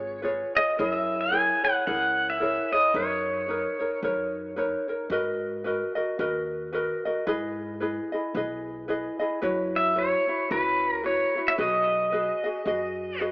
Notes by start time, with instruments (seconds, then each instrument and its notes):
Already playing: upright bass G#1, ukulele F4 G#4 B4 C#5, pedal steel guitar C#5
0.22 ukulele F4 G#4 B4 C#5
0.55 ukulele F4 G#4 C#5, pedal steel guitar D#5
0.78 upright bass F#2, ukulele E4 G#4 A#4 C#5, pedal steel guitar D#5
0.90 pedal steel guitar E5
1.21 pedal steel guitar G#5
1.31 ukulele E4 G#4 A#4 C#5
1.64 ukulele E4 G#4 C#5, pedal steel guitar F#5
1.87 upright bass C#2, ukulele E4 G#4 A#4 C#5, pedal steel guitar F#5
2.30 pedal steel guitar E5
2.40 ukulele E4 G#4 A#4 C#5
2.72 ukulele E4 G#4 C#5, pedal steel guitar D#5
2.94 upright bass F#2, ukulele D#4 A#4 B4 C#5, pedal steel guitar C#5
3.48 ukulele D#4 A#4 B4 C#5
3.79 ukulele D#4 A#4 C#5
4.02 upright bass F#2, ukulele D#4 A#4 B4 C#5
4.56 ukulele D#4 A#4 B4 C#5
4.88 ukulele D#4 A#4 C#5
5.10 upright bass G#2, ukulele F#4 A#4 B4 D#5
5.64 ukulele F#4 A#4 B4 D#5
5.95 ukulele F#4 A#4 D#5
6.19 upright bass D#2, ukulele F#4 A#4 B4 D#5
6.73 ukulele F#4 A#4 B4 D#5
7.05 ukulele F#4 A#4 D#5
7.27 upright bass G#2, ukulele E4 G#4 B4 D#5
7.80 ukulele E4 G#4 B4 D#5
8.12 ukulele E4 G#4 D#5
8.35 upright bass B1, ukulele E4 G#4 B4 D#5
8.88 ukulele E4 G#4 B4 D#5
9.19 ukulele E4 G#4 D#5
9.42 upright bass F#2, ukulele E4 F#4 B4 C#5
9.76 pedal steel guitar E5
9.96 ukulele E4 F#4 B4 C#5, pedal steel guitar C#5
10.27 ukulele E4 F#4 C#5
10.51 upright bass C#2, ukulele E4 F#4 B4 C#5, pedal steel guitar B4
10.92 pedal steel guitar A#4
11.04 ukulele E4 F#4 B4 C#5, pedal steel guitar C#5
11.35 ukulele E4 F#4 C#5
11.48 pedal steel guitar E5
11.58 upright bass B1, ukulele F#4 G#4 B4 D#5, pedal steel guitar D#5
12.12 ukulele F#4 G#4 B4 D#5
12.44 ukulele F#4 G#4 D#5
12.66 upright bass F#2, ukulele F#4 G#4 B4 D#5
13.20 ukulele F#4 G#4 B4 D#5